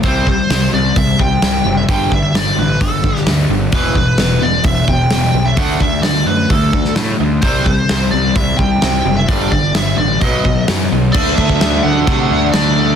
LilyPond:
<<
  \new Staff \with { instrumentName = "Lead electric guitar" } { \time 4/4 \key d \mixolydian \tempo 4 = 130 c''8 c''4 d''8 e''8 g''4~ g''16 e''16 | g''8 e''8 d''8 b'8 a'4 r4 | b'8 b'4 d''8 e''8 g''4~ g''16 e''16 | fis''8 e''8 d''8 b'8 a'4 r4 |
c''8 c''4 d''8 e''8 g''4~ g''16 e''16 | d''8 d''8 e''8 d''8 dis''4 r4 | d''8 e''4 fis''4. d''4 | }
  \new Staff \with { instrumentName = "Distorted electric guitar" } { \clef bass \time 4/4 \key d \mixolydian r1 | r1 | r1 | r1 |
r1 | r1 | <d fis a d'>2~ <d fis a d'>8 <d fis a d'>8 <d fis a d'>4 | }
  \new Staff \with { instrumentName = "Overdriven electric guitar" } { \clef bass \time 4/4 \key d \mixolydian <c g c'>8 <c g>8 <c g>8 <c g>8 <c g>8 <c g>8 <c g>8 <c g>8 | <g, d g>8 <g, d>8 <g, d>8 <g, d>8 <g, d>8 <g, d>8 <g, d>8 <g, d>8 | <e, b, e>8 <e, b,>8 <e, b,>8 <e, b,>8 <e, b,>8 <e, b,>8 <e, b,>8 <e, b,>8 | <d a d'>8 <d a>8 <d a>8 <d a>8 <d a>8 <d a>8 <d a>8 <d a>8 |
<c g c'>8 <c g>8 <c g>8 <c g>8 <c g>8 <c g>8 <c g>8 <c g>8 | <g, d g>8 <g, d>8 <g, d>8 <g, d>8 <b, fis b>8 <b, fis>8 <b, fis>8 <b, fis>8 | <d a d'>2 <d a d'>2 | }
  \new Staff \with { instrumentName = "Overdriven electric guitar" } { \clef bass \time 4/4 \key d \mixolydian <c g c'>8 <c g>8 <c g>8 <c g>8 <c g>8 <c g>8 <c g>8 <c g>8 | <g, d g>8 <g, d>8 <g, d>8 <g, d>8 <g, d>8 <g, d>8 <g, d>8 <g, d>8 | <e, b, e>8 <e, b,>8 <e, b,>8 <e, b,>8 <e, b,>8 <e, b,>8 <e, b,>8 <e, b,>8 | <d a d'>8 <d a>8 <d a>8 <d a>8 <d a>8 <d a>8 <d a>8 <d a>8 |
<c g c'>8 <c g>8 <c g>8 <c g>8 <c g>8 <c g>8 <c g>8 <c g>8 | <g, d g>8 <g, d>8 <g, d>8 <g, d>8 <b, fis b>8 <b, fis>8 <b, fis>8 <b, fis>8 | <d a d'>2 <d a d'>2 | }
  \new Staff \with { instrumentName = "Picked electric bass" } { \clef bass \time 4/4 \key d \mixolydian c,4 c,8 c,8 c,8 c,8 c,8 fis,,8 | g,,8 g,,8 g,,8 a,,8 g,,8 g,,8 d,8 g,,8 | e,,4 e,,8 e,,8 e,,8 e,,8 e,,8 b,,8 | d,8 d,8 d,8 fis,8 d,8 d,8 a,8 d,8 |
c,4 c,8 c,8 c,8 c,8 c,8 fis,,8 | g,,8 g,,8 g,,8 a,,8 b,,8 b,,8 fis,8 b,,8 | d,8 d,8 d,8 d,8 c8 d,8 d,4 | }
  \new DrumStaff \with { instrumentName = "Drums" } \drummode { \time 4/4 <hho bd>8 bd8 <hho sn>4 <hho bd>8 bd8 <hho sn>4 | <hho bd>8 bd8 <hho sn>4 <hho bd>8 bd16 sn16 <hho sn>4 | <hho bd>8 bd8 <hho sn>4 <hho bd>8 bd8 <hho sn>4 | <hho bd>8 bd8 <hho sn>4 <hho bd>8 bd16 sn16 <hho sn>4 |
<hho bd>8 bd8 <hho sn>4 <hho bd>8 bd8 <hho sn>4 | <hho bd>8 bd8 <hho sn>4 <hho bd>8 bd8 <hho sn>4 | <cymc bd>8 bd16 bd16 <cymc sn>4 <cymc bd>4 <cymc sn>4 | }
>>